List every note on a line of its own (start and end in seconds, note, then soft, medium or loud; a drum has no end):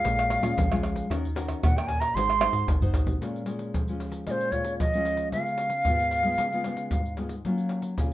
0.00 0.39 G#3 medium
0.00 0.39 C#4 medium
0.00 0.39 F4 medium
0.00 1.10 F5 loud
0.04 0.38 A#1 loud
0.04 0.54 A#2 medium
0.04 pandeiro medium
0.04 shaker medium
0.04 surdo medium
0.19 pandeiro soft
0.19 tamborim medium
0.19 shaker soft
0.30 pandeiro medium
0.30 tamborim medium
0.42 0.54 A#2 loud
0.42 0.65 G#3 medium
0.42 0.65 C#4 medium
0.42 0.65 F4 medium
0.42 pandeiro medium
0.42 tamborim medium
0.42 shaker medium
0.42 surdo soft
0.58 1.02 A#1 medium
0.58 1.07 F3 medium
0.58 pandeiro medium
0.58 shaker medium
0.58 surdo loud
0.72 1.06 G#3 medium
0.72 1.07 C#4 medium
0.72 1.07 F4 medium
0.72 pandeiro soft
0.72 tamborim loud
0.72 shaker soft
0.83 pandeiro medium
0.83 tamborim medium
0.83 shaker medium
0.96 pandeiro medium
0.96 shaker medium
0.96 surdo soft
1.10 1.55 D#2 medium
1.10 1.60 D#3 medium
1.10 1.25 C#4 medium
1.10 1.26 F#4 medium
1.10 1.26 A#4 medium
1.10 pandeiro medium
1.10 tamborim medium
1.10 shaker medium
1.10 surdo medium
1.25 pandeiro soft
1.25 shaker soft
1.25 surdo soft
1.35 1.71 C#4 medium
1.35 1.71 F#4 medium
1.35 1.71 A#4 medium
1.35 pandeiro medium
1.35 shaker medium
1.48 pandeiro medium
1.48 tamborim medium
1.48 shaker medium
1.48 surdo soft
1.63 2.08 D#2 medium
1.63 2.13 A#2 medium
1.63 1.78 F#5 medium
1.63 pandeiro medium
1.63 tamborim medium
1.63 shaker medium
1.63 surdo loud
1.76 2.11 C#4 medium
1.76 2.11 F#4 medium
1.76 2.12 A#4 medium
1.76 1.89 G5 medium
1.76 pandeiro soft
1.76 tamborim medium
1.76 shaker soft
1.87 2.02 G#5 medium
1.87 pandeiro medium
2.00 2.16 A#5 medium
2.00 pandeiro medium
2.00 tamborim medium
2.00 shaker medium
2.15 2.49 G#1 loud
2.15 2.65 G#3 medium
2.15 2.31 D#4 medium
2.15 2.31 F#4 medium
2.15 2.31 C5 medium
2.15 2.68 C6 medium
2.15 pandeiro medium
2.15 shaker medium
2.15 surdo medium
2.30 pandeiro soft
2.30 tamborim medium
2.30 shaker soft
2.40 2.76 D#4 medium
2.40 2.76 F#4 medium
2.40 2.77 C5 medium
2.40 pandeiro medium
2.40 tamborim loud
2.53 2.65 G#2 medium
2.53 pandeiro medium
2.53 shaker medium
2.53 surdo soft
2.67 2.92 G#1 medium
2.67 3.18 D#3 medium
2.67 pandeiro medium
2.67 shaker medium
2.67 surdo loud
2.82 3.17 D#4 medium
2.82 3.17 F#4 medium
2.82 3.17 C5 medium
2.82 surdo loud
2.82 pandeiro soft
2.82 shaker soft
2.93 3.18 A#1 medium
2.93 pandeiro medium
2.93 surdo medium
3.07 pandeiro medium
3.07 shaker medium
3.07 surdo medium
3.21 3.71 A#2 medium
3.21 3.43 G#3 soft
3.21 3.43 C#4 medium
3.21 3.43 F4 medium
3.21 pandeiro medium
3.21 surdo soft
3.36 pandeiro soft
3.46 3.82 G#3 medium
3.46 3.82 C#4 soft
3.46 3.82 F4 medium
3.46 pandeiro medium
3.59 pandeiro soft
3.74 4.24 F3 medium
3.74 pandeiro medium
3.74 surdo medium
3.88 4.23 G#3 soft
3.88 4.23 C#4 medium
3.88 4.24 F4 soft
3.88 pandeiro soft
4.00 pandeiro medium
4.12 pandeiro medium
4.27 4.77 A#2 medium
4.27 4.49 G#3 soft
4.27 4.49 C#4 soft
4.27 4.50 F4 medium
4.27 4.32 D#5 medium
4.27 pandeiro medium
4.27 surdo soft
4.31 4.53 C5 medium
4.41 pandeiro soft
4.51 4.88 G#3 soft
4.51 4.88 C#4 soft
4.51 4.88 F4 medium
4.51 4.79 C#5 medium
4.51 pandeiro medium
4.51 surdo medium
4.64 pandeiro medium
4.80 5.30 F3 medium
4.80 5.29 D#5 medium
4.80 pandeiro medium
4.80 surdo medium
4.93 5.29 G#3 medium
4.93 5.29 C#4 medium
4.93 5.29 F4 medium
4.93 pandeiro soft
5.05 pandeiro medium
5.17 pandeiro medium
5.32 5.83 C#3 medium
5.32 5.67 G#3 medium
5.32 5.67 B3 medium
5.32 5.67 F4 medium
5.32 7.14 F5 medium
5.32 pandeiro medium
5.32 surdo medium
5.46 pandeiro soft
5.58 pandeiro medium
5.70 pandeiro medium
5.85 6.36 G#2 medium
5.85 6.22 G#3 soft
5.85 6.22 B3 medium
5.85 6.22 F4 medium
5.85 pandeiro medium
5.85 surdo loud
6.00 pandeiro soft
6.11 pandeiro medium
6.23 6.47 G#3 medium
6.23 6.47 B3 medium
6.23 6.48 F4 medium
6.23 pandeiro soft
6.38 6.89 C#3 medium
6.38 pandeiro medium
6.38 surdo medium
6.53 6.61 G#3 soft
6.53 6.62 B3 medium
6.53 6.62 F4 medium
6.53 pandeiro soft
6.64 6.99 G#3 soft
6.64 7.00 B3 soft
6.64 7.00 F4 medium
6.64 pandeiro medium
6.77 pandeiro medium
6.91 7.42 G#2 medium
6.91 pandeiro medium
6.91 surdo medium
7.05 pandeiro soft
7.17 7.33 G#3 soft
7.17 7.33 B3 soft
7.17 7.34 F4 medium
7.17 pandeiro medium
7.29 pandeiro medium
7.45 7.95 F#3 medium
7.45 7.93 A#3 medium
7.45 7.94 C#4 medium
7.45 7.94 F4 medium
7.45 pandeiro medium
7.45 surdo soft
7.58 pandeiro soft
7.69 pandeiro medium
7.82 pandeiro soft
7.98 8.14 C#3 medium
7.98 8.14 A#3 soft
7.98 8.14 C#4 soft
7.98 8.14 F4 medium
7.98 pandeiro medium
7.98 surdo medium